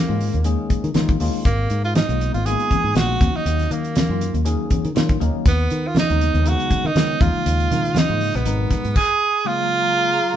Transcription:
Already playing: A#3
0.08 G#2 D#3 G#3 A#3 C#4 F4
0.21 open hi-hat, muted conga
0.34 D#2, closed hi-hat
0.44 D#3 G#3 A#3 C#4 G#4, closed hi-hat, muted conga
0.70 muted fretless electric bass stroke, kick, closed hi-hat, muted conga
0.84 D#3, closed hi-hat
0.94 D#3 G#3 A#3 C#4 F4, snare, closed hi-hat, high conga
1.08 kick, closed hi-hat
1.20 D#2 D#3 G#3 A#3 C#4 F4, open hi-hat
1.45 G#1 A#3, kick, closed hi-hat, muted conga
1.70 G#2, closed hi-hat
1.84 F4
1.95 D#4, snare, closed hi-hat, high conga
2.08 B1 D#3 G#3 A#3 B3 F4, closed hi-hat
2.21 closed hi-hat, muted conga
2.34 G#1 F4, closed hi-hat
2.45 D#3 G#3 A#3 B3 F4 G#4, closed hi-hat, muted conga
2.60 closed hi-hat
2.71 kick, closed hi-hat, muted conga, high conga
2.84 G#2
2.95 A#1 D#3 G#3 A#3 B3 F4 F#4, snare, closed hi-hat
3.20 D#2 D#3 F#3 A#3 C#4 F#4, kick, closed hi-hat, high conga
3.34 D#4, muted fretless electric bass stroke
3.45 D#2, closed hi-hat, muted conga
3.59 snare, closed hi-hat
3.71 D#3 A#3, closed hi-hat
3.84 closed hi-hat
3.96 snare, closed hi-hat, high conga
4.09 F#2 D#3 F#3 A#3 C#4 F4
4.21 closed hi-hat, muted conga
4.34 D#2, closed hi-hat
4.45 D#3 F#3 A#3 C#4 G#4, closed hi-hat, muted conga
4.70 muted fretless electric bass stroke, kick, closed hi-hat, muted conga, high conga
4.85 D#3, closed hi-hat
4.95 D#3 F#3 A#3 C#4 F4, snare, closed hi-hat, high conga
5.09 kick, closed hi-hat
5.20 D#2 D#3 F#3 A#3 C#4 D#4, closed hi-hat
5.34 muted fretless electric bass stroke
5.46 D#2 B3, kick, closed hi-hat, muted conga
5.70 D#3, closed hi-hat
5.87 F4
5.95 snare, closed hi-hat, high conga
5.99 D#4
6.09 D#2 C#3 F#3 G#3 B3 D#4, closed hi-hat
6.20 closed hi-hat, muted conga
6.34 D#2, closed hi-hat
6.44 C#3 F#3 G#3 B3 D#4, closed hi-hat, muted conga
6.48 F#4
6.60 closed hi-hat
6.70 kick, closed hi-hat, muted conga, high conga
6.84 D#3 D#4
6.95 C#3 D#3 F#3 G#3 B3 C#4, snare, closed hi-hat
7.20 D#2 C#3 F3 G#3 A#3 D#4 F4, kick, closed hi-hat, high conga
7.35 muted fretless electric bass stroke
7.46 D#2, closed hi-hat, muted conga
7.60 closed hi-hat
7.71 D#3, closed hi-hat, low conga
7.85 closed hi-hat
7.95 D#4, snare, closed hi-hat, high conga
8.08 G#2 C#3 F3 G#3 A#3 F4
8.21 open hi-hat, muted conga
8.35 A#1 B3, snare, closed hi-hat
8.45 G#1 B2 F#3 G#3 D#4 A#4, closed hi-hat, muted conga
8.71 kick, snare, closed hi-hat, muted conga, high conga
8.85 G#2, closed hi-hat
8.96 G#4, kick, crash
9.45 C#3 F#3 G#3 A#3 F4 G#4 F5 A#5

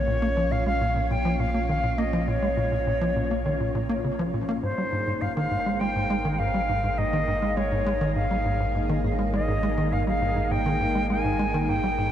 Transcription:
Already playing: A#1 A#3 C#4 F4 C#5
0.07 A#2
0.22 A#3
0.37 F3
0.52 A#2 F5
0.66 G#3 F5
0.81 A#2
0.96 A#2
1.10 A#2 G5
1.25 F3
1.40 A#2 F5
1.54 A#3
1.69 D#3 F5
1.83 A#2
1.98 A#3 D#5
2.13 F3
2.28 A#2 C#5
2.42 G#3
2.57 A#2
2.72 A#2
2.87 A#2
3.01 F3
3.16 A#2
3.31 A#3
3.46 D#3
3.60 A#2
3.75 A#2
3.89 A#3
4.04 C#3
4.19 F3
4.34 A#2
4.49 A#3
4.63 G#1 G#2 A#3 D#4 G#4 A#4 C5
4.78 G3
4.92 G#2
5.07 G#2
5.21 G#2 F5
5.36 D#3 F5
5.51 G#2
5.66 G#3
5.80 G#3 G5
5.96 G#2
6.10 G#3
6.25 D#3
6.39 G#2 F5
6.54 G3
6.69 G#2
6.84 G#2
6.98 G#2 D#5
7.13 D#3
7.28 G#2
7.42 G#3
7.57 G#3 C#5
7.72 G#2
7.86 G#3
8.01 D#3
8.16 G#2 F5
8.31 G3
8.45 G#2
8.60 G#2
8.75 G#2
8.89 D#3
9.04 G#2
9.19 G#3
9.34 G#3 D#5
9.48 G#2
9.63 G#3
9.78 D#3
9.92 G#2 F5
10.07 G3 F5
10.22 G#2
10.36 G#2
10.51 G#2 G5
10.66 D#3
10.81 G#2
10.95 G#3
11.10 G#3 G#5
11.24 G#2
11.39 G#3
11.54 D#3
11.69 G#2 G5
11.84 G3
11.98 G#2

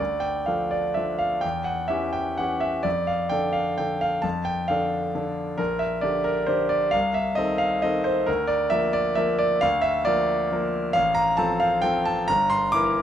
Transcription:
Already playing: D2 D5
0.20 G5
0.46 F3 D4 A4 F5
0.71 D5
0.94 F3 D4 A4 E5
1.19 F5
1.41 E2 G5
1.64 F#5
1.88 E3 C#4 G4 E5
2.13 G5
2.37 E3 C#4 G4 F#5
2.60 E5
2.83 F2 D5
3.07 F5
3.29 D3 D4 A4 G5
3.53 F5
3.78 D3 D4 A4 G5
4.01 F5
4.22 F2 A5
4.45 G5
4.68 D3 D4 A4 F5
5.15 D3 D4 A4
5.58 A#1 A#4
5.79 E5
6.01 D3 D4 G4 D5
6.24 A#4
6.46 D3 D4 G4 C5
6.69 D5
6.91 C2 F5
7.14 E5
7.35 D#3 C4 A4 D#5
7.58 F5
7.82 D#3 C4 A4 D#5
8.04 C5
8.26 D2 A#4
8.47 D5
8.70 F3 A#3 A#4 E5
8.93 D5
9.15 F3 A#3 A#4 E5
9.39 D5
9.61 D2 F5
9.82 E5
10.05 F3 A#3 A#4 D5
10.52 F3 A#3 A#4
10.93 A1 F5
11.15 A#5
11.37 F3 C4 A4 A5
11.60 F5
11.82 F3 C4 A4 G5
12.05 A5
12.28 G1 A#5
12.50 C6
12.72 E3 E4 A#4 D6

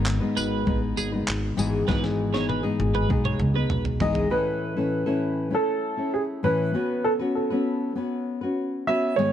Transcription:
Already playing: G#1 G#2 D#3 G#3 B3 D#4 B4
0.06 clap
0.20 G#2 D#3 G#3 B3 D#4 B4
0.37 G#1 B4, tambourine
0.66 A1 G#3 B3 D#4 B4, kick
0.97 G#1 G#4, tambourine
1.12 G#3 B3 D#4 B4
1.28 G#1, clap
1.57 G#1 G#2 E3 G#3 B3 D#4 G#4, tambourine
1.87 G#1 G#2 E3 G#3 B3 D#4 G#4 B4, kick, snare
2.04 snare
2.33 G#2 E3 G#3 B3 D#4 G#4 C#5, snare
2.49 B4, high tom
2.63 G#2 E3 G#3 B3 D#4 G#4
2.80 G#1, high tom
2.95 B4, mid tom
3.08 B1 G#3 B3 D#4 G#4, kick
3.25 C#5, mid tom
3.39 C#2, mid tom
3.54 G#3 B3 D#4 G#4 B4
3.70 B1, mid tom
3.85 floor tom
4.00 G#1 G#2 E3 G#3 B3 D#4 G#4 D#5, floor tom
4.15 floor tom
4.30 A2 E3 A3 C#4 E4 A4 B4
4.77 A2 E3 A3 C#4 E4 A4
5.06 A2 E3 A3 C#4 E4 A4
5.50 A3 C#4 E4 A4
5.55 A4
5.97 A3 C#4 E4
6.14 G#4
6.43 A2 E3 A3 C#4 E4 A4 B4
6.74 B3 C#4 F#4 B4
7.04 A4
7.19 B3 C#4 F#4 B4
7.35 A4
7.50 B3 C#4 F#4 B4
7.95 B3 C#4 F#4 B4
8.41 C#4 F#4 B4
8.87 B3 C#4 F#4 B4 E5
9.16 G#2 D#3 G#3 B3 D#4 G#4 C#5

